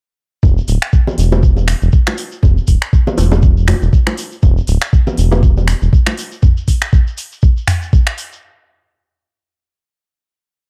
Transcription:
0.43 0.60 E1 loud
0.43 kick loud
0.43 mid tom medium
0.43 low bongo medium
0.43 shekere medium
0.58 shekere soft
0.68 0.77 D1 loud
0.68 open hi-hat loud
0.68 shekere medium
0.82 finger snap loud
0.82 shekere soft
0.93 kick loud
0.93 shekere medium
1.07 low bongo medium
1.07 shekere soft
1.18 1.74 E1 medium
1.18 open hi-hat loud
1.18 shekere loud
1.32 high bongo medium
1.32 low bongo medium
1.32 shekere soft
1.43 kick loud
1.43 shekere medium
1.57 low bongo medium
1.57 shekere soft
1.68 finger snap medium
1.68 open hi-hat medium
1.68 shekere medium
1.82 1.89 E1 loud
1.82 shekere soft
1.92 kick loud
1.92 shekere soft
2.07 finger snap medium
2.07 high bongo medium
2.07 shekere soft
2.18 open hi-hat medium
2.18 shekere medium
2.32 shekere soft
2.43 2.60 E1 loud
2.43 kick loud
2.43 mid tom medium
2.43 low bongo medium
2.43 shekere medium
2.57 shekere soft
2.67 2.77 D1 loud
2.67 kick medium
2.67 open hi-hat medium
2.67 shekere loud
2.82 finger snap loud
2.82 shekere soft
2.93 kick loud
2.93 shekere medium
3.07 low bongo loud
3.07 shekere soft
3.18 3.74 E1 medium
3.18 open hi-hat loud
3.18 high bongo medium
3.18 shekere medium
3.31 high bongo medium
3.31 low bongo loud
3.31 shekere soft
3.42 kick loud
3.42 shekere medium
3.57 shekere soft
3.68 finger snap medium
3.68 mid tom medium
3.68 open hi-hat medium
3.68 high bongo medium
3.68 shekere medium
3.82 3.89 E1 loud
3.82 shekere soft
3.93 kick loud
3.93 shekere medium
4.07 finger snap loud
4.07 high bongo medium
4.07 shekere soft
4.17 open hi-hat medium
4.17 shekere medium
4.32 shekere soft
4.43 4.60 E1 loud
4.43 kick loud
4.43 mid tom medium
4.43 low bongo medium
4.43 shekere medium
4.57 shekere soft
4.67 4.77 D1 loud
4.67 open hi-hat medium
4.67 shekere medium
4.82 finger snap loud
4.82 shekere soft
4.93 kick loud
4.93 shekere medium
5.07 low bongo loud
5.07 shekere soft
5.17 5.74 E1 medium
5.17 open hi-hat medium
5.17 shekere loud
5.32 high bongo medium
5.32 low bongo loud
5.32 shekere soft
5.43 kick loud
5.43 shekere medium
5.57 low bongo medium
5.57 shekere soft
5.68 finger snap loud
5.68 open hi-hat medium
5.68 shekere medium
5.82 5.89 E1 loud
5.82 shekere soft
5.93 kick loud
5.93 shekere medium
6.06 finger snap loud
6.06 high bongo medium
6.06 shekere soft
6.18 open hi-hat loud
6.18 shekere medium
6.32 shekere soft
6.42 kick loud
6.42 mid tom medium
6.42 shekere medium
6.57 shekere soft
6.68 kick medium
6.68 open hi-hat medium
6.68 shekere loud
6.81 finger snap loud
6.81 shekere soft
6.93 kick loud
6.93 shekere medium
7.07 shekere soft
7.18 open hi-hat medium
7.18 shekere loud
7.32 shekere soft
7.42 kick loud
7.42 shekere medium
7.57 shekere soft
7.68 finger snap loud
7.68 mid tom medium
7.68 open hi-hat medium
7.68 shekere medium
7.82 shekere soft
7.93 kick loud
7.93 shekere medium
8.06 finger snap loud
8.06 shekere soft
8.18 open hi-hat medium
8.18 shekere medium
8.32 shekere soft

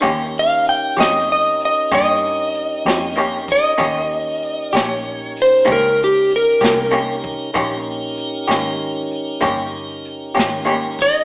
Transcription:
0.01 0.95 D#2 medium
0.01 0.21 D#3 medium
0.01 0.22 A#3 medium
0.01 3.74 C#4 medium
0.01 0.22 C#4 medium
0.01 3.74 D#4 medium
0.01 3.74 G4 medium
0.01 0.22 G4 medium
0.01 3.74 A#4 medium
0.01 kick medium
0.01 closed hi-hat medium
0.39 0.68 F5 medium
0.67 0.98 G5 medium
0.67 closed hi-hat soft
0.97 1.88 F2 medium
0.97 1.17 A#3 soft
0.97 1.17 C#4 soft
0.97 1.16 G4 soft
0.97 1.29 D#5 medium
0.97 snare medium
0.97 closed hi-hat medium
1.32 1.61 D#5 medium
1.60 closed hi-hat soft
1.65 1.93 D#5 medium
1.92 2.83 G2 medium
1.92 2.10 D#3 medium
1.92 2.10 A#3 medium
1.92 2.10 C#4 medium
1.92 2.10 G4 medium
1.92 3.14 D#5 medium
1.92 kick loud
1.92 closed hi-hat medium
2.54 closed hi-hat medium
2.85 3.76 F2 medium
2.85 3.05 A#3 soft
2.85 3.05 C#4 soft
2.85 3.04 G4 soft
2.85 snare medium
2.85 closed hi-hat medium
3.16 3.35 D#3 medium
3.16 3.35 A#3 medium
3.16 3.36 C#4 medium
3.16 3.36 G4 medium
3.48 4.77 D#5 medium
3.48 kick medium
3.48 closed hi-hat medium
3.78 4.70 D#2 medium
3.78 3.97 D#3 medium
3.78 3.97 A#3 medium
3.78 3.97 C#4 medium
3.78 7.51 C#4 medium
3.78 7.51 D#4 medium
3.78 3.98 G4 medium
3.78 7.51 G4 medium
3.78 7.51 A#4 medium
3.78 kick medium
3.78 closed hi-hat medium
4.43 closed hi-hat medium
4.73 5.64 A#1 medium
4.73 4.93 A#3 soft
4.73 4.93 C#4 medium
4.73 4.92 G4 medium
4.73 5.33 C#5 medium
4.73 snare medium
4.73 closed hi-hat medium
5.37 closed hi-hat medium
5.42 5.69 C5 medium
5.65 6.59 C#2 medium
5.65 5.85 D#3 medium
5.65 5.85 A#3 medium
5.65 5.85 C#4 medium
5.65 5.85 G4 medium
5.65 kick loud
5.65 closed hi-hat medium
5.72 6.00 A#4 medium
6.04 6.31 G4 medium
6.30 closed hi-hat medium
6.36 6.93 A#4 medium
6.61 7.52 C2 medium
6.61 6.80 A#3 soft
6.61 6.80 C#4 soft
6.61 6.80 G4 soft
6.61 snare medium
6.61 closed hi-hat medium
6.91 7.10 D#3 soft
6.91 7.11 A#3 medium
6.91 7.10 C#4 medium
6.91 7.11 G4 medium
7.24 kick medium
7.24 closed hi-hat soft
7.53 8.46 A#1 medium
7.53 7.73 D#3 medium
7.53 7.73 A#3 medium
7.53 11.24 C#4 medium
7.53 7.74 C#4 medium
7.53 11.24 D#4 medium
7.53 11.24 G4 medium
7.53 7.74 G4 medium
7.53 11.24 A#4 medium
7.53 kick loud
7.53 closed hi-hat medium
8.18 closed hi-hat medium
8.48 9.40 G#1 medium
8.48 8.68 A#3 soft
8.48 8.67 C#4 medium
8.48 8.67 G4 medium
8.48 snare medium
8.48 closed hi-hat medium
9.11 closed hi-hat medium
9.41 10.34 G1 medium
9.41 9.60 D#3 medium
9.41 9.61 A#3 medium
9.41 9.61 C#4 medium
9.41 9.61 G4 medium
9.41 kick loud
9.41 closed hi-hat medium
10.05 closed hi-hat medium
10.35 11.24 G#1 medium
10.35 10.55 A#3 soft
10.35 10.55 C#4 soft
10.35 10.54 G4 medium
10.35 closed hi-hat medium
10.39 snare medium
10.65 10.85 D#3 medium
10.65 10.85 A#3 medium
10.65 10.86 C#4 medium
10.65 10.86 G4 medium
10.99 11.24 D#5 medium
10.99 kick medium
10.99 closed hi-hat medium

